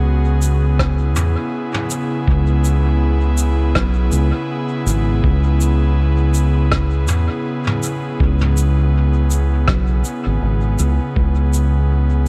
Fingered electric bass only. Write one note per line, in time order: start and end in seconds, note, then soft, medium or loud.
0.00 1.16 C#2 medium
1.16 1.35 E2 medium
2.27 3.73 C#2 loud
3.75 4.09 B1 loud
4.12 4.31 C#2 loud
4.86 5.20 G#1 loud
5.24 7.09 C#2 loud
7.09 7.27 E2 medium
8.20 9.65 C#2 loud
9.68 10.01 B1 loud
10.26 10.40 G#1 medium
10.42 10.75 G#1 medium
10.80 10.98 C#2 medium
11.16 12.28 C#2 medium